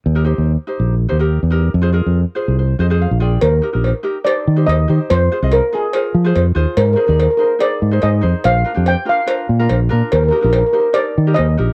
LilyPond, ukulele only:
\new Staff \with { instrumentName = "Ukulele" } { \time 4/4 \key ees \major \tempo 4 = 143 << { r1 | r4. c''8 c''8 ees''8 f''8 g''8 | r1 | r1 |
r1 | r1 | r1 | } \\ { r16 <ees' g' bes'>16 <ees' g' c''>8 r8 <ees' g' c''>8 r8 <ees' g' c''>16 <ees' g' bes'>8 r16 <ees' g' bes'>8 | r16 <f' aes' c''>16 <f' aes' bes'>8 r8 <f' aes' c''>8 r8 <f' aes' c''>16 <f' aes' c''>8 r16 <f' aes' d''>8 | r8 <ees' g' bes'>16 <ees' g' bes'>8 r16 <ees' g' bes'>16 r16 <ees' g' c''>8 r16 <ees' g' c''>8 r16 <ees' g' c''>8 | r8 <f' aes' c''>16 <f' aes' ees''>8 r16 <f' aes' ees''>16 r16 <f' aes' bes'>8 r16 <f' aes' c''>8 r16 <f' aes' c''>8 |
r8 <ees' aes' c''>16 <ees' aes' d''>8 r16 <ees' aes' c''>16 r16 <ees' aes' d''>8 r16 <ees' aes' c''>8 r16 <ees' aes' c''>8 | r8 <d' f' bes'>16 <d' f' g'>8 r16 <d' f' bes'>16 r16 <d' f' bes'>8 r16 <d' f' bes'>8 r16 <d' f' bes'>8 | r8 <ees' g' bes'>16 <ees' g' bes'>8 r16 <ees' g' c''>16 r16 <ees' g' bes'>8 r16 <ees' g' bes'>8 r16 <ees' g' bes'>8 | } >> }